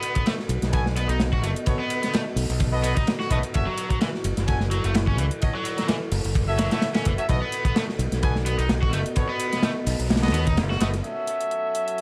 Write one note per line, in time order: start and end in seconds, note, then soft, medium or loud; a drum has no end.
0.00 0.14 B3 medium
0.00 3.51 B3 medium
0.00 7.25 F#4 medium
0.00 3.50 A4 medium
0.00 3.50 D#5 medium
0.00 closed hi-hat medium
0.00 ride medium
0.15 0.24 B3 medium
0.15 kick loud
0.15 closed hi-hat soft
0.26 0.32 A3 loud
0.26 snare loud
0.26 closed hi-hat soft
0.26 ride medium
0.39 snare soft
0.49 0.60 B1 loud
0.49 closed hi-hat medium
0.49 ride medium
0.62 1.05 B1 medium
0.62 snare soft
0.62 closed hi-hat soft
0.73 0.85 B3 loud
0.73 0.85 F#4 medium
0.73 0.85 A4 medium
0.73 0.85 G#5 loud
0.73 kick loud
0.73 closed hi-hat soft
0.73 ride medium
0.86 snare soft
0.96 1.08 B3 medium
0.96 closed hi-hat medium
0.96 ride medium
1.09 1.43 B1 loud
1.09 1.19 D#4 medium
1.09 closed hi-hat soft
1.09 ride soft
1.20 snare loud
1.20 closed hi-hat soft
1.20 ride medium
1.33 1.42 F#4 medium
1.33 kick medium
1.43 1.53 F#1 medium
1.43 1.50 A3 medium
1.43 closed hi-hat medium
1.43 ride medium
1.56 closed hi-hat soft
1.66 1.79 B3 medium
1.66 1.79 F#4 medium
1.66 1.79 A4 medium
1.66 1.79 C#5 medium
1.66 kick loud
1.66 closed hi-hat soft
1.66 ride medium
1.79 2.02 B3 medium
1.90 closed hi-hat medium
1.90 ride medium
2.03 2.12 B3 medium
2.03 snare soft
2.03 closed hi-hat soft
2.13 2.20 A3 loud
2.13 snare loud
2.13 closed hi-hat soft
2.13 ride medium
2.36 2.47 B1 loud
2.36 closed hi-hat medium
2.36 open hi-hat medium
2.49 2.93 B1 medium
2.49 closed hi-hat soft
2.60 kick loud
2.60 closed hi-hat soft
2.60 ride medium
2.73 2.94 B3 medium
2.73 2.93 F#4 medium
2.73 2.94 A4 medium
2.73 2.94 D#5 loud
2.83 2.95 B3 medium
2.83 closed hi-hat medium
2.83 ride medium
2.96 3.07 D#4 medium
2.96 kick loud
2.96 closed hi-hat soft
3.07 snare loud
3.07 closed hi-hat soft
3.07 ride medium
3.20 3.29 F#4 medium
3.20 snare soft
3.30 3.41 B1 medium
3.30 3.37 A3 medium
3.30 3.43 B3 medium
3.30 3.43 F#4 medium
3.30 3.43 A4 medium
3.30 3.43 D#5 medium
3.30 kick medium
3.30 closed hi-hat medium
3.30 ride medium
3.43 closed hi-hat soft
3.43 ride soft
3.54 3.65 F#1 medium
3.54 3.67 C#4 loud
3.54 7.26 E4 medium
3.54 3.67 F#4 medium
3.54 3.67 A4 medium
3.54 11.00 A4 medium
3.54 3.67 E5 loud
3.54 kick loud
3.54 closed hi-hat soft
3.54 ride medium
3.66 3.89 F#3 medium
3.77 closed hi-hat medium
3.77 ride medium
3.90 3.99 F#3 medium
3.90 kick medium
3.90 closed hi-hat soft
4.01 4.07 E3 loud
4.01 snare loud
4.01 closed hi-hat soft
4.01 ride medium
4.14 snare soft
4.24 4.35 F#1 medium
4.24 closed hi-hat medium
4.24 ride medium
4.37 4.80 F#1 medium
4.37 snare soft
4.37 closed hi-hat soft
4.47 4.60 C#4 medium
4.47 4.60 F#4 medium
4.47 4.60 A4 medium
4.47 4.60 G#5 loud
4.47 kick loud
4.47 closed hi-hat soft
4.47 ride medium
4.60 snare soft
4.71 4.83 F#3 medium
4.71 closed hi-hat medium
4.71 ride medium
4.84 5.18 F#1 medium
4.84 4.94 A3 medium
4.84 closed hi-hat soft
4.84 ride soft
4.94 snare loud
4.94 closed hi-hat soft
4.94 ride medium
5.07 5.16 C#4 medium
5.07 kick medium
5.18 5.29 C#2 medium
5.18 5.25 E3 medium
5.18 closed hi-hat medium
5.18 ride medium
5.31 closed hi-hat soft
5.42 5.54 C#4 medium
5.42 5.54 F#4 medium
5.42 5.54 A4 medium
5.42 5.54 D#5 medium
5.42 kick loud
5.42 closed hi-hat soft
5.42 ride medium
5.55 5.77 F#3 medium
5.65 closed hi-hat medium
5.65 ride medium
5.78 5.87 F#3 medium
5.78 snare soft
5.78 closed hi-hat soft
5.88 5.95 E3 loud
5.88 snare loud
5.88 closed hi-hat soft
5.88 ride medium
6.12 6.22 F#1 loud
6.12 closed hi-hat medium
6.12 open hi-hat medium
6.25 6.68 F#1 medium
6.25 closed hi-hat soft
6.35 kick loud
6.35 closed hi-hat soft
6.35 ride medium
6.48 6.68 C#4 medium
6.48 6.68 F#4 medium
6.48 6.68 A4 medium
6.48 6.68 E5 loud
6.58 6.71 F#3 medium
6.58 snare loud
6.58 closed hi-hat medium
6.58 ride medium
6.71 6.82 A3 medium
6.71 6.89 C#4 medium
6.71 6.89 F#4 medium
6.71 6.89 A4 medium
6.71 6.89 E5 loud
6.71 snare loud
6.71 closed hi-hat soft
6.71 ride medium
6.82 snare loud
6.82 closed hi-hat soft
6.82 ride medium
6.94 7.04 C#4 medium
6.94 snare loud
6.94 ride medium
7.05 7.16 F#1 medium
7.05 7.12 E3 medium
7.05 kick medium
7.05 closed hi-hat medium
7.05 ride medium
7.18 7.27 C#4 loud
7.18 7.27 F#4 medium
7.18 7.27 A4 medium
7.18 7.27 E5 loud
7.18 closed hi-hat soft
7.18 ride soft
7.29 7.40 B1 loud
7.29 7.42 B3 loud
7.29 11.01 B3 medium
7.29 7.42 F#4 medium
7.29 11.01 F#4 medium
7.29 7.42 A4 medium
7.29 11.00 D#5 medium
7.29 7.42 D#5 loud
7.29 kick loud
7.29 closed hi-hat soft
7.29 ride medium
7.42 7.64 B3 medium
7.52 closed hi-hat medium
7.52 ride medium
7.65 7.74 B3 medium
7.65 kick loud
7.65 closed hi-hat soft
7.76 7.82 A3 loud
7.76 snare loud
7.76 closed hi-hat soft
7.76 ride medium
7.89 snare soft
7.99 8.09 B1 loud
7.99 closed hi-hat medium
7.99 ride medium
8.12 8.55 B1 medium
8.12 snare soft
8.12 closed hi-hat soft
8.22 8.35 B3 loud
8.22 8.35 F#4 medium
8.22 8.35 A4 medium
8.22 8.35 G#5 loud
8.22 kick loud
8.22 closed hi-hat soft
8.22 ride medium
8.36 snare soft
8.46 8.58 B3 medium
8.46 closed hi-hat medium
8.46 ride medium
8.58 8.93 B1 medium
8.58 8.69 D#4 medium
8.58 closed hi-hat soft
8.58 ride soft
8.69 snare loud
8.69 closed hi-hat soft
8.69 ride medium
8.82 8.91 F#4 medium
8.82 kick loud
8.93 9.03 F#1 medium
8.93 8.99 A3 medium
8.93 closed hi-hat medium
8.93 ride medium
9.06 closed hi-hat soft
9.16 9.29 B3 medium
9.16 9.29 F#4 medium
9.16 9.29 A4 medium
9.16 9.29 C#5 medium
9.16 kick loud
9.16 closed hi-hat soft
9.16 ride medium
9.29 9.51 B3 medium
9.40 closed hi-hat medium
9.40 ride medium
9.53 9.62 B3 medium
9.53 snare soft
9.53 closed hi-hat soft
9.63 9.70 A3 loud
9.63 snare loud
9.63 closed hi-hat soft
9.63 ride medium
9.87 9.97 B1 loud
9.87 closed hi-hat medium
9.87 open hi-hat medium
9.99 10.33 B1 medium
9.99 closed hi-hat soft
10.10 snare medium
10.10 closed hi-hat soft
10.10 ride medium
10.16 snare medium
10.16 ride medium
10.23 10.43 B3 medium
10.23 10.43 F#4 medium
10.23 10.43 A4 medium
10.23 10.43 D#5 loud
10.23 snare medium
10.23 ride medium
10.28 snare medium
10.28 ride medium
10.33 10.58 D#2 medium
10.33 10.45 B3 medium
10.33 closed hi-hat medium
10.33 ride medium
10.47 10.57 D#4 medium
10.47 kick loud
10.47 closed hi-hat soft
10.57 10.76 F#1 loud
10.57 snare loud
10.57 closed hi-hat soft
10.57 ride medium
10.70 10.79 F#4 medium
10.70 snare soft
10.80 11.00 F#1 medium
10.80 10.87 A3 medium
10.80 10.93 B3 medium
10.80 10.93 F#4 medium
10.80 10.93 A4 medium
10.80 10.93 D#5 loud
10.80 snare loud
10.80 closed hi-hat medium
10.80 ride medium
10.94 snare soft
10.94 closed hi-hat soft
11.04 12.01 F#3 medium
11.04 12.01 C#4 medium
11.04 12.01 F#4 medium
11.04 12.01 A4 medium
11.04 12.01 E5 medium
11.04 closed hi-hat soft
11.27 closed hi-hat medium
11.41 closed hi-hat soft
11.51 closed hi-hat soft
11.75 closed hi-hat medium
11.88 closed hi-hat soft